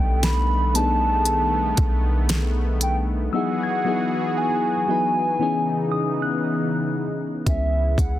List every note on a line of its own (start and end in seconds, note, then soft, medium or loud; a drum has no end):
0.00 1.74 B1 loud
0.00 3.29 D#3 medium
0.00 0.74 G3 medium
0.00 3.29 A3 medium
0.00 0.75 B3 medium
0.00 3.29 B3 medium
0.00 0.75 D4 medium
0.00 0.76 D#4 medium
0.00 0.84 A4 medium
0.00 0.26 G5 loud
0.23 0.77 B5 loud
0.23 snare loud
0.23 closed hi-hat medium
0.74 2.15 G3 medium
0.74 2.15 B3 medium
0.74 2.16 D4 medium
0.74 2.16 D#4 medium
0.74 0.82 G#4 medium
0.74 2.30 A5 loud
0.74 closed hi-hat medium
0.84 2.20 A4 medium
1.25 closed hi-hat medium
1.77 3.29 B1 loud
1.77 kick medium
1.77 closed hi-hat medium
2.29 snare loud
2.29 closed hi-hat medium
2.81 2.96 G5 medium
2.81 closed hi-hat medium
3.32 5.37 E3 medium
3.32 3.68 F#3 medium
3.32 5.37 B3 medium
3.32 3.68 B3 medium
3.32 3.69 D#4 medium
3.32 3.69 E4 medium
3.32 5.37 F#4 medium
3.32 5.38 G#4 medium
3.32 3.70 G#4 medium
3.32 4.39 F#5 loud
3.32 4.47 E6 medium
3.63 4.75 G#6 medium
3.84 4.55 F#3 medium
3.84 4.55 B3 medium
3.84 4.56 D#4 medium
3.84 4.56 E4 medium
3.84 4.57 G#4 medium
4.38 6.44 G#5 loud
4.87 5.39 F#3 medium
4.87 5.39 B3 medium
4.87 5.40 D#4 medium
4.87 5.41 E4 medium
4.87 5.41 B4 medium
5.39 7.45 C#3 medium
5.39 7.05 E3 medium
5.39 7.45 E3 medium
5.39 7.05 B3 medium
5.39 7.45 B3 medium
5.39 7.06 C#4 medium
5.39 7.45 D#4 medium
5.39 7.06 D#4 medium
5.39 7.07 G#4 medium
5.92 7.05 D#6 medium
6.22 7.34 F#6 medium
7.46 7.96 C#2 loud
7.46 8.19 C#3 medium
7.46 8.19 E3 medium
7.46 8.19 G#3 medium
7.46 8.19 B3 medium
7.46 8.19 C#4 medium
7.46 8.19 E4 medium
7.46 8.19 G#4 medium
7.46 8.01 E5 loud
7.46 kick medium
7.46 closed hi-hat medium
7.98 8.19 C#2 medium
7.98 8.19 F#5 medium
7.98 kick loud
7.98 closed hi-hat medium